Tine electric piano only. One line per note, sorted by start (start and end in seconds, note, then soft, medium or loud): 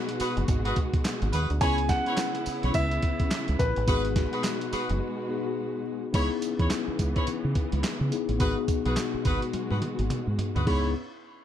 0.00 1.57 B3 medium
0.00 1.57 D#4 medium
0.00 1.58 F#4 medium
0.00 1.58 G#4 medium
1.61 3.83 B3 medium
1.61 3.84 C#4 medium
1.61 3.84 E4 medium
1.61 3.85 G#4 medium
3.87 5.26 B3 medium
3.87 5.26 D#4 medium
3.87 5.27 F#4 medium
3.87 5.27 G#4 medium
5.29 6.12 B3 medium
5.29 6.12 D#4 medium
5.29 6.14 F#4 medium
5.29 6.14 G#4 medium
6.13 8.08 B3 medium
6.13 8.08 D#4 medium
6.13 8.08 E4 medium
6.13 8.09 G#4 medium
8.11 8.38 B3 medium
8.11 8.38 D#4 medium
8.11 8.40 E4 medium
8.11 8.40 G#4 medium
8.39 10.62 B3 medium
8.39 10.63 D#4 medium
8.39 10.63 F#4 medium
8.39 10.63 G#4 medium
10.67 10.93 B3 medium
10.67 10.93 D#4 medium
10.67 10.93 E4 medium
10.67 10.93 G#4 medium